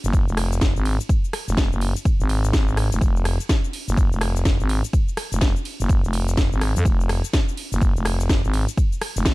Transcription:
0.04 0.26 F#1 loud
0.04 shaker medium
0.13 kick loud
0.13 ride medium
0.13 shaker medium
0.28 0.74 F1 loud
0.28 shaker soft
0.37 cross-stick medium
0.37 open hi-hat loud
0.37 ride medium
0.52 shaker medium
0.61 kick loud
0.61 snare loud
0.61 ride medium
0.61 shaker medium
0.76 0.98 G#1 medium
0.76 shaker soft
0.85 open hi-hat loud
0.85 ride medium
1.00 shaker medium
1.09 kick loud
1.09 ride medium
1.09 shaker medium
1.24 shaker soft
1.33 cross-stick medium
1.33 open hi-hat loud
1.33 ride medium
1.48 1.70 F1 loud
1.48 shaker medium
1.57 kick loud
1.57 snare loud
1.57 ride medium
1.57 shaker medium
1.72 1.94 F#1 medium
1.72 shaker soft
1.81 open hi-hat loud
1.81 ride medium
1.96 shaker medium
2.05 kick loud
2.05 ride medium
2.05 shaker medium
2.20 2.52 G#1 loud
2.20 shaker soft
2.29 open hi-hat loud
2.29 ride medium
2.44 shaker medium
2.53 2.90 G#1 medium
2.53 kick loud
2.53 snare loud
2.53 ride medium
2.53 shaker medium
2.68 shaker soft
2.77 cross-stick medium
2.77 open hi-hat medium
2.77 ride medium
2.92 3.00 F1 loud
2.92 shaker medium
3.01 3.38 F1 loud
3.01 kick loud
3.01 ride medium
3.01 shaker medium
3.16 shaker soft
3.25 cross-stick medium
3.25 open hi-hat loud
3.25 ride medium
3.40 shaker medium
3.49 kick loud
3.49 snare loud
3.49 ride medium
3.49 shaker medium
3.64 shaker soft
3.73 open hi-hat medium
3.73 ride medium
3.88 4.10 F#1 loud
3.88 shaker medium
3.97 kick loud
3.97 ride medium
3.97 shaker medium
4.12 4.58 F1 loud
4.12 shaker soft
4.21 cross-stick medium
4.21 open hi-hat loud
4.21 ride medium
4.36 shaker medium
4.45 kick loud
4.45 snare loud
4.45 ride medium
4.45 shaker medium
4.60 4.82 G#1 medium
4.60 shaker soft
4.69 open hi-hat medium
4.69 ride medium
4.84 shaker medium
4.93 kick loud
4.93 ride medium
4.93 shaker medium
5.08 shaker soft
5.17 cross-stick medium
5.17 open hi-hat loud
5.17 ride medium
5.32 5.54 F1 loud
5.32 shaker medium
5.41 kick loud
5.41 snare loud
5.41 ride medium
5.41 shaker medium
5.56 shaker soft
5.65 open hi-hat medium
5.65 ride medium
5.80 6.02 F#1 loud
5.80 shaker medium
5.89 kick loud
5.89 ride medium
5.89 shaker medium
6.04 6.50 F1 loud
6.04 shaker soft
6.13 open hi-hat loud
6.13 ride medium
6.28 shaker medium
6.37 kick loud
6.37 snare loud
6.37 ride medium
6.37 shaker medium
6.52 6.74 G#1 loud
6.52 shaker soft
6.61 cross-stick medium
6.61 open hi-hat medium
6.61 ride medium
6.76 6.84 F2 loud
6.76 shaker medium
6.85 7.22 F1 loud
6.85 kick loud
6.85 ride medium
6.85 shaker medium
7.00 shaker soft
7.09 cross-stick medium
7.09 open hi-hat loud
7.09 ride medium
7.24 shaker medium
7.33 kick loud
7.33 snare loud
7.33 ride medium
7.33 shaker medium
7.48 shaker soft
7.57 open hi-hat medium
7.57 ride medium
7.72 7.94 F#1 loud
7.72 shaker medium
7.81 kick loud
7.81 ride medium
7.81 shaker medium
7.96 8.42 F1 loud
7.96 shaker soft
8.05 cross-stick medium
8.05 open hi-hat loud
8.05 ride medium
8.20 shaker medium
8.29 kick loud
8.29 snare loud
8.29 ride medium
8.29 shaker medium
8.44 8.66 G#1 medium
8.44 shaker soft
8.54 open hi-hat medium
8.54 ride medium
8.68 shaker medium
8.77 kick loud
8.77 ride medium
8.77 shaker medium
8.93 shaker soft
9.01 cross-stick medium
9.01 open hi-hat loud
9.01 ride medium
9.16 9.34 F1 loud
9.16 shaker medium
9.25 kick loud
9.25 snare loud
9.25 ride medium
9.25 shaker medium

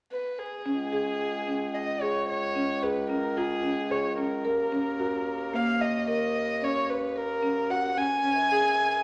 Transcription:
0.12 0.41 B4 medium
0.39 1.76 G#4 medium
0.66 4.42 C#2 medium
0.66 0.81 C#4 medium
0.93 1.24 G#4 medium
1.47 1.78 C#4 medium
1.75 2.03 D#5 medium
2.02 2.33 G#4 medium
2.02 2.28 C#5 medium
2.29 2.85 C#5 medium
2.55 2.71 C#4 medium
2.83 2.98 G#4 medium
2.83 3.10 B4 medium
3.10 3.25 C#4 medium
3.10 3.39 A#4 medium
3.37 3.52 F4 medium
3.37 3.93 G#4 medium
3.64 3.79 C#4 medium
3.90 4.06 G#4 medium
3.90 4.18 C#5 medium
4.18 4.33 C#4 medium
4.18 5.56 A#4 medium
4.45 8.08 D#2 medium
4.45 4.60 A#4 medium
4.72 4.88 C#4 medium
4.99 5.30 F#4 medium
5.54 5.85 A#3 medium
5.54 5.83 F5 medium
5.81 6.07 D#5 medium
6.07 6.38 A#4 medium
6.07 6.65 D#5 medium
6.62 6.93 C#4 medium
6.62 6.91 C#5 medium
6.90 7.18 B4 medium
7.16 7.31 A#4 medium
7.16 7.72 A#4 medium
7.43 7.58 C#4 medium
7.70 7.85 F#4 medium
7.70 8.00 F#5 medium
7.97 8.13 C#4 medium
7.97 9.03 G#5 medium
8.24 9.03 F#2 medium
8.24 8.39 C#4 medium
8.51 8.82 G#4 medium

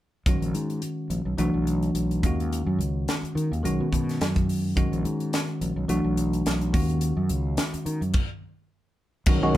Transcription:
0.26 0.40 B1 medium
0.26 1.37 D#3 medium
0.26 1.37 G#3 soft
0.26 1.38 C#4 medium
0.26 1.38 F#4 medium
0.26 kick medium
0.26 closed hi-hat medium
0.41 0.53 A#1 medium
0.41 closed hi-hat soft
0.54 0.80 G#2 medium
0.54 closed hi-hat medium
0.70 closed hi-hat soft
0.82 closed hi-hat medium
1.10 1.25 A#1 medium
1.10 closed hi-hat soft
1.25 1.38 B1 medium
1.38 1.53 B1 medium
1.38 2.23 E3 medium
1.38 2.23 A3 soft
1.38 2.23 D4 medium
1.38 2.24 F#4 medium
1.38 closed hi-hat medium
1.54 1.92 B1 medium
1.67 closed hi-hat soft
1.82 closed hi-hat soft
1.95 2.21 B1 medium
1.95 closed hi-hat medium
2.11 closed hi-hat soft
2.23 2.64 D#2 medium
2.23 3.61 D#3 medium
2.23 3.62 G#3 medium
2.23 3.62 C#4 soft
2.23 3.63 F#4 medium
2.23 kick medium
2.23 closed hi-hat medium
2.40 closed hi-hat soft
2.53 closed hi-hat medium
2.66 2.78 F#2 medium
2.79 3.05 C#2 medium
2.79 closed hi-hat medium
3.08 snare medium
3.08 closed hi-hat medium
3.23 muted fretless electric bass stroke soft
3.23 closed hi-hat soft
3.35 3.50 D#3 medium
3.35 closed hi-hat soft
3.52 3.63 D#2 medium
3.52 closed hi-hat soft
3.63 3.79 B1 medium
3.63 4.74 D#3 medium
3.63 4.75 G#3 soft
3.63 4.75 C#4 medium
3.63 4.75 F#4 medium
3.63 closed hi-hat medium
3.80 3.91 B2 medium
3.92 4.19 B2 medium
3.92 kick medium
3.92 closed hi-hat soft
4.09 snare soft
4.09 closed hi-hat soft
4.21 4.73 F#2 medium
4.21 snare medium
4.21 closed hi-hat medium
4.36 kick medium
4.36 closed hi-hat soft
4.49 open hi-hat medium
4.76 4.91 B1 medium
4.76 5.87 D#3 medium
4.76 5.87 G#3 soft
4.76 5.87 C#4 medium
4.76 5.88 F#4 medium
4.76 kick medium
4.76 closed hi-hat medium
4.92 5.04 A#1 medium
4.92 closed hi-hat soft
5.04 5.31 G#2 medium
5.04 closed hi-hat soft
5.20 closed hi-hat soft
5.33 snare medium
5.33 closed hi-hat medium
5.61 5.76 A#1 medium
5.61 closed hi-hat medium
5.76 5.88 B1 medium
5.88 6.04 B1 medium
5.88 6.74 E3 medium
5.88 6.74 A3 medium
5.88 6.74 D4 medium
5.88 6.73 F#4 medium
5.88 closed hi-hat medium
6.04 6.43 B1 medium
6.17 closed hi-hat medium
6.33 closed hi-hat soft
6.46 6.72 B1 medium
6.46 snare medium
6.46 closed hi-hat medium
6.61 closed hi-hat soft
6.73 7.15 D#2 medium
6.73 8.12 D#3 medium
6.73 8.12 G#3 soft
6.73 8.12 C#4 medium
6.73 8.12 F#4 medium
6.73 kick medium
6.73 open hi-hat medium
6.89 closed hi-hat soft
7.01 closed hi-hat medium
7.17 7.29 F#2 medium
7.29 7.56 C#2 medium
7.29 closed hi-hat medium
7.57 snare loud
7.57 closed hi-hat medium
7.74 muted fretless electric bass stroke soft
7.74 closed hi-hat soft
7.86 8.01 D#3 medium
7.86 closed hi-hat medium
8.01 8.13 F#2 medium
8.01 closed hi-hat soft
8.13 kick medium
8.13 crash medium
9.26 9.41 B1 medium
9.26 9.40 D#3 medium
9.26 9.40 G#3 medium
9.26 9.57 B3 medium
9.26 9.40 C#4 medium
9.26 9.57 D#4 medium
9.26 9.40 F#4 medium
9.26 9.57 A#4 medium
9.26 9.57 C#5 medium
9.26 kick loud
9.26 crash medium
9.42 9.54 B1 medium
9.42 9.57 D#3 medium
9.42 9.57 G#3 medium
9.42 9.57 C#4 medium
9.42 9.57 F#4 medium

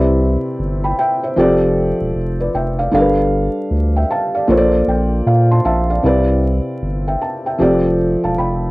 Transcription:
0.00 0.37 C2 loud
0.00 0.86 C3 medium
0.00 0.87 C4 medium
0.00 0.87 E4 medium
0.00 1.38 A#4 medium
0.00 0.20 B4 medium
0.00 0.21 D5 medium
0.59 0.93 G1 loud
0.84 0.97 G5 medium
0.84 0.97 B5 medium
0.99 1.22 E5 medium
0.99 1.21 G5 medium
1.23 1.60 C5 medium
1.23 1.60 E5 medium
1.36 1.93 F1 loud
1.36 2.77 F3 medium
1.36 2.78 C4 medium
1.36 2.78 G4 medium
1.36 2.78 A4 medium
1.36 2.16 D5 loud
2.01 2.13 E1 medium
2.15 2.49 F1 loud
2.40 2.53 B4 medium
2.40 2.53 D5 medium
2.54 2.88 F1 loud
2.54 2.78 E5 medium
2.54 2.77 G5 medium
2.79 3.16 D5 medium
2.79 2.93 F5 medium
2.91 3.49 G1 loud
2.91 3.98 G3 medium
2.91 3.98 D4 medium
2.91 3.98 A4 medium
2.91 3.01 A#4 medium
2.91 3.71 F5 medium
3.00 4.02 B4 medium
3.71 4.05 D2 loud
3.96 4.09 E5 medium
3.96 4.09 G5 medium
4.10 4.33 F5 medium
4.10 4.33 A5 medium
4.34 4.56 D5 medium
4.34 4.71 F5 medium
4.47 4.83 A#1 loud
4.47 5.89 A#3 medium
4.47 5.89 F4 medium
4.47 5.89 A4 medium
4.47 5.90 C5 medium
4.47 4.57 C#5 medium
4.57 4.91 D5 loud
4.87 5.22 A#1 medium
4.87 5.24 G5 medium
5.26 5.61 A#2 loud
5.26 5.63 F5 medium
5.51 5.63 A5 medium
5.51 5.65 C6 medium
5.65 5.99 A#1 medium
5.65 6.01 E5 medium
5.65 5.88 F5 medium
5.65 5.88 A5 medium
5.90 6.05 D5 medium
5.90 6.27 F5 medium
6.03 6.60 C2 loud
6.03 6.39 C3 medium
6.03 6.39 C4 medium
6.03 6.40 E4 medium
6.03 6.40 B4 medium
6.03 6.40 D5 medium
6.82 7.16 G1 medium
7.08 7.21 E5 medium
7.08 7.21 G5 medium
7.22 7.44 A5 medium
7.46 7.83 E5 soft
7.46 7.83 G5 medium
7.58 8.16 F1 loud
7.58 7.94 F3 medium
7.58 7.95 C4 medium
7.58 7.95 G4 medium
7.58 7.95 A4 medium
7.58 7.96 D5 loud
8.24 8.36 E1 medium
8.24 8.38 F5 medium
8.24 8.37 A5 medium
8.38 8.71 F1 medium
8.38 8.71 G5 medium
8.38 8.71 B5 medium

